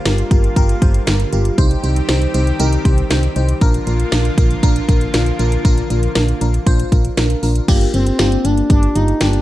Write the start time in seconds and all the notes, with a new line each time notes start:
Already playing: D3 G3 A#3 F4
0.06 G1 F4 G4 A#4, snare, closed hi-hat
0.18 closed hi-hat
0.31 G1 F4 G4 A#4, kick, closed hi-hat
0.44 closed hi-hat
0.56 G1 F4 G4 A#4, kick, closed hi-hat
0.69 closed hi-hat
0.82 G1 F4 G4 C5, kick, closed hi-hat
0.94 closed hi-hat
1.07 G1 F4 G4 A#4, snare, closed hi-hat
1.20 closed hi-hat
1.33 G1 F4 G4 A#4, closed hi-hat
1.45 closed hi-hat
1.58 C2 D#3 C4 D#4 G4 C5, kick, closed hi-hat
1.71 closed hi-hat
1.83 C2 D#4 G4 C5, closed hi-hat
1.96 closed hi-hat
2.09 C2 D#4 G4 C5, snare, closed hi-hat
2.22 closed hi-hat
2.34 C2 D#4 G4 C5, closed hi-hat
2.47 closed hi-hat
2.60 C2 D#4 G4 A#4, closed hi-hat
2.73 closed hi-hat
2.85 C2 D#4 G4 C5, kick, closed hi-hat
2.98 closed hi-hat
3.10 C2 D#4 G4 C5, snare, closed hi-hat
3.23 closed hi-hat
3.36 C2 D#4 G4 C5, closed hi-hat
3.49 closed hi-hat
3.61 A#1 D3 F3 A#3 D4 F4 A#4, kick, closed hi-hat
3.74 closed hi-hat
3.87 A#1 D4 F4 A#4, closed hi-hat
4.00 closed hi-hat
4.12 A#1 D4 F4 A#4, snare, closed hi-hat
4.25 closed hi-hat
4.38 A#1 D4 F4 A#4, kick, closed hi-hat
4.51 closed hi-hat
4.63 A#1 D4 F4 A#4, kick, closed hi-hat
4.76 closed hi-hat
4.89 A#1 D4 F4 A#4, kick, closed hi-hat
5.01 closed hi-hat
5.14 A#1 D4 F4 A#4, snare, closed hi-hat
5.26 closed hi-hat
5.39 A#1 D4 F4 A#4, closed hi-hat
5.52 closed hi-hat
5.65 A#1 D4 F4 A#4, kick, closed hi-hat
5.78 closed hi-hat
5.90 A#1 D4 F4 A#4, closed hi-hat
6.03 closed hi-hat
6.15 A#1 D4 F4 A#4, snare, closed hi-hat
6.28 closed hi-hat
6.41 A#1 D4 F4 A#4, closed hi-hat
6.54 closed hi-hat
6.66 A#1 D4 F4 C5, kick, closed hi-hat
6.79 closed hi-hat
6.92 A#1 D4 F4 A#4, kick, closed hi-hat
7.05 closed hi-hat
7.17 A#1 D4 F4 A#4, snare, closed hi-hat
7.30 closed hi-hat
7.43 A#1 D4 F4 A#4, open hi-hat
7.55 closed hi-hat
7.68 G1 A#3 D4 F4 G4, kick, closed hi-hat, crash
7.81 closed hi-hat
7.94 G1 A#3 C4 D4 F4 G4, closed hi-hat
8.07 C4, closed hi-hat
8.19 G1 A#3 D4 F4 G4, snare, closed hi-hat
8.32 closed hi-hat
8.45 G1 A#3 D4 F4 G4, closed hi-hat
8.57 closed hi-hat
8.70 G1 A#3 D4 F4 G4, kick, closed hi-hat
8.83 closed hi-hat
8.95 G1 A#3 D4 D#4 F4 G4, closed hi-hat
9.08 closed hi-hat
9.21 G1 A#3 D4 F4 G4, snare, closed hi-hat
9.33 closed hi-hat